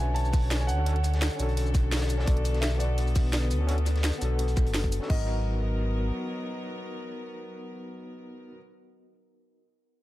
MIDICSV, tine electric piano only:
0, 0, Header, 1, 2, 480
1, 0, Start_track
1, 0, Tempo, 352941
1, 1176, Time_signature, 4, 2, 24, 8
1, 13634, End_track
2, 0, Start_track
2, 0, Title_t, "Tine electric piano"
2, 0, Program_c, 0, 4
2, 0, Note_on_c, 0, 61, 77
2, 0, Note_on_c, 0, 62, 72
2, 0, Note_on_c, 0, 66, 73
2, 20, Note_on_c, 0, 71, 87
2, 1009, Note_off_c, 0, 61, 0
2, 1024, Note_off_c, 0, 62, 0
2, 1039, Note_off_c, 0, 66, 0
2, 1042, Note_on_c, 0, 61, 82
2, 1053, Note_off_c, 0, 71, 0
2, 1056, Note_on_c, 0, 62, 75
2, 1070, Note_on_c, 0, 66, 76
2, 1086, Note_on_c, 0, 69, 89
2, 1139, Note_off_c, 0, 61, 0
2, 1146, Note_off_c, 0, 62, 0
2, 1152, Note_off_c, 0, 66, 0
2, 1154, Note_on_c, 0, 61, 98
2, 1160, Note_off_c, 0, 69, 0
2, 1168, Note_on_c, 0, 62, 90
2, 1184, Note_on_c, 0, 66, 95
2, 1200, Note_on_c, 0, 69, 106
2, 1265, Note_off_c, 0, 61, 0
2, 1273, Note_off_c, 0, 62, 0
2, 1280, Note_off_c, 0, 66, 0
2, 1288, Note_off_c, 0, 69, 0
2, 1850, Note_on_c, 0, 61, 97
2, 1880, Note_on_c, 0, 62, 89
2, 1911, Note_on_c, 0, 66, 86
2, 1940, Note_on_c, 0, 69, 100
2, 2934, Note_off_c, 0, 61, 0
2, 2949, Note_off_c, 0, 62, 0
2, 2962, Note_on_c, 0, 61, 102
2, 2964, Note_off_c, 0, 66, 0
2, 2977, Note_on_c, 0, 62, 84
2, 2979, Note_off_c, 0, 69, 0
2, 2991, Note_on_c, 0, 66, 86
2, 3006, Note_on_c, 0, 69, 102
2, 3055, Note_on_c, 0, 59, 77
2, 3058, Note_off_c, 0, 61, 0
2, 3066, Note_off_c, 0, 62, 0
2, 3073, Note_off_c, 0, 66, 0
2, 3081, Note_off_c, 0, 69, 0
2, 3085, Note_on_c, 0, 62, 74
2, 3114, Note_on_c, 0, 66, 77
2, 3143, Note_on_c, 0, 69, 93
2, 3754, Note_off_c, 0, 59, 0
2, 3770, Note_on_c, 0, 59, 77
2, 3783, Note_off_c, 0, 62, 0
2, 3798, Note_off_c, 0, 66, 0
2, 3801, Note_on_c, 0, 62, 70
2, 3812, Note_off_c, 0, 69, 0
2, 3830, Note_on_c, 0, 66, 74
2, 3859, Note_on_c, 0, 71, 85
2, 4849, Note_off_c, 0, 59, 0
2, 4864, Note_off_c, 0, 62, 0
2, 4877, Note_on_c, 0, 61, 85
2, 4879, Note_off_c, 0, 66, 0
2, 4893, Note_off_c, 0, 71, 0
2, 4893, Note_on_c, 0, 62, 78
2, 4908, Note_on_c, 0, 66, 77
2, 4922, Note_on_c, 0, 69, 89
2, 4976, Note_off_c, 0, 61, 0
2, 4984, Note_off_c, 0, 62, 0
2, 4990, Note_on_c, 0, 61, 100
2, 4991, Note_off_c, 0, 66, 0
2, 4998, Note_off_c, 0, 69, 0
2, 5004, Note_on_c, 0, 62, 88
2, 5018, Note_on_c, 0, 66, 90
2, 5035, Note_on_c, 0, 69, 108
2, 5104, Note_off_c, 0, 61, 0
2, 5111, Note_off_c, 0, 62, 0
2, 5118, Note_off_c, 0, 66, 0
2, 5126, Note_off_c, 0, 69, 0
2, 5687, Note_on_c, 0, 59, 98
2, 5718, Note_on_c, 0, 62, 84
2, 5747, Note_on_c, 0, 66, 91
2, 5776, Note_on_c, 0, 69, 103
2, 6772, Note_off_c, 0, 59, 0
2, 6787, Note_off_c, 0, 62, 0
2, 6797, Note_on_c, 0, 61, 94
2, 6802, Note_off_c, 0, 66, 0
2, 6812, Note_on_c, 0, 62, 88
2, 6817, Note_off_c, 0, 69, 0
2, 6826, Note_on_c, 0, 66, 88
2, 6841, Note_on_c, 0, 69, 103
2, 6866, Note_on_c, 0, 59, 85
2, 6896, Note_off_c, 0, 61, 0
2, 6903, Note_off_c, 0, 62, 0
2, 6909, Note_on_c, 0, 63, 83
2, 6911, Note_off_c, 0, 66, 0
2, 6918, Note_off_c, 0, 69, 0
2, 6954, Note_on_c, 0, 66, 77
2, 7000, Note_on_c, 0, 70, 99
2, 11568, Note_off_c, 0, 59, 0
2, 11612, Note_off_c, 0, 63, 0
2, 11656, Note_off_c, 0, 66, 0
2, 11702, Note_off_c, 0, 70, 0
2, 13634, End_track
0, 0, End_of_file